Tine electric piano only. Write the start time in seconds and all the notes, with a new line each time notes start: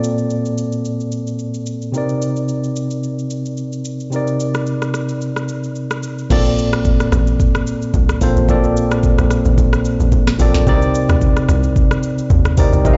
Already playing: A#2 A#3 C4 A4 D5
1.92 C3 C4 D#4
1.96 A#4 D5
4.10 C3 C4 D#4
4.14 A#4 D5
6.30 A#2 A#3 C4 A4 D5
8.21 A#2 A#3 C4 A4 C5
8.48 A#2 A#3 C4 A4 D5
10.39 A#2 A#3 C4 A4 D5
10.66 C3 C4 D#4 A#4 D5
12.57 C3 C4 D#4 A#4 D5
12.84 C3 C4 D#4 A#4 D#5
12.93 F5